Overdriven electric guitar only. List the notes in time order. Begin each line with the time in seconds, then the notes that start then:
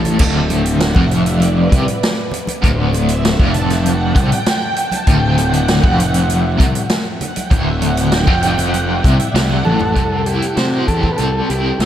Already playing: A2
0.20 D2
0.96 F2
1.70 C3
2.62 D2
3.40 F2
4.15 C3
5.07 D2
5.83 F2
6.58 C3
7.51 D2
8.27 F2
9.03 C3
9.35 C3
9.64 A2
9.97 C3
10.26 E4
10.57 C5
10.88 G4
11.20 C4
11.51 E4
11.81 C4